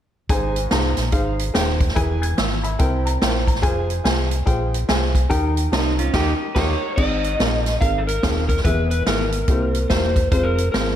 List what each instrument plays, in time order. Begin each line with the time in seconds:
0.29 fingered electric bass G#1, upright piano G#2 D#4 G#4 C5 G#5, kick, closed hi-hat
0.56 closed hi-hat
0.71 fingered electric bass C2, upright piano D#4 G#4 C5 A#5, snare, closed hi-hat
0.97 fingered electric bass A#1, snare, closed hi-hat
1.12 fingered electric bass G#1, upright piano D#4 G#4 C5 F5, kick, closed hi-hat
1.39 closed hi-hat
1.54 fingered electric bass D#1, upright piano D#4 G#4 C5 G5, snare, closed hi-hat
1.80 kick, closed hi-hat
1.88 snare
1.95 fingered electric bass E1, upright piano E3 E4 G#4 B4 G#5, kick, closed hi-hat
2.22 upright piano G#6, closed hi-hat
2.37 fingered electric bass G#1, upright piano E6, snare, closed hi-hat
2.63 upright piano E5 B5, closed hi-hat
2.78 fingered electric bass C2, upright piano C3 E4 A#4 C5 G5, kick, closed hi-hat
3.05 upright piano A#5, closed hi-hat
3.22 fingered electric bass A#1, upright piano E4 A#4 C5 G5, snare, closed hi-hat
3.47 upright piano A#5, kick, closed hi-hat
3.55 snare
3.62 fingered electric bass F1, upright piano F4 G#4 C5 G#5, kick, closed hi-hat
3.90 closed hi-hat
4.04 fingered electric bass C2, upright piano F4 G#4 C5 G#5, snare, closed hi-hat
4.31 closed hi-hat
4.45 fingered electric bass A#1, upright piano F4 G#4 C5 G5, kick, closed hi-hat
4.74 closed hi-hat
4.89 fingered electric bass C2, upright piano F4 G#4 C5 G#5, snare, closed hi-hat
5.15 kick, closed hi-hat
5.29 fingered electric bass D#2, upright piano D#3 D#4 G4 A#4 G5, kick, closed hi-hat
5.57 closed hi-hat
5.72 fingered electric bass C2, clean electric guitar C4 D#4, upright piano D#4 G4 A#4 A#5, snare, closed hi-hat
5.99 clean electric guitar C#4 F4, closed hi-hat
6.14 fingered electric bass D#2, upright piano D#4 G4 A#4 G5, clean electric guitar D#4 G4, kick, snare, crash
6.55 fingered electric bass D#2, upright piano D#4 G4 A#4, clean electric guitar D#4 G4, electric slide guitar C#5, kick, snare, crash
6.96 fingered electric bass G#1, upright piano G#2 C4 D#4 G#4 D#5, electric slide guitar D#5, kick, crash
7.24 closed hi-hat
7.39 fingered electric bass A#1, upright piano C4 D#4 G#4 A#4, snare, closed hi-hat
7.66 snare, closed hi-hat
7.80 fingered electric bass G#1, upright piano C4 D#4 G#4 A#4, electric slide guitar F5, kick, closed hi-hat
7.98 electric slide guitar A4
8.07 electric slide guitar A#4, closed hi-hat
8.23 fingered electric bass D#1, upright piano C4 D#4 G#4 F5, kick, snare, closed hi-hat
8.48 electric slide guitar A#4, kick, closed hi-hat
8.57 snare
8.64 fingered electric bass E1, upright piano E3 B3 E4 G#4 E5, electric slide guitar B4, kick, closed hi-hat
8.91 electric slide guitar B4, closed hi-hat
9.06 fingered electric bass G#1, upright piano B3 E4 G#4 E5, electric slide guitar A#4, snare, closed hi-hat
9.32 closed hi-hat
9.48 fingered electric bass C2, upright piano C3 A#3 E4 G4 C5, kick, closed hi-hat
9.74 closed hi-hat
9.90 fingered electric bass E1, upright piano A#3 E4 G4 A#4, electric slide guitar C5, kick, snare, closed hi-hat
10.16 kick, closed hi-hat
10.31 fingered electric bass F1, upright piano G#3 C4 F4 C5, electric slide guitar C5, kick, closed hi-hat
10.43 electric slide guitar A#4
10.58 closed hi-hat
10.72 fingered electric bass G#1, upright piano G#3 C4 F4 C5, electric slide guitar A#4, snare, closed hi-hat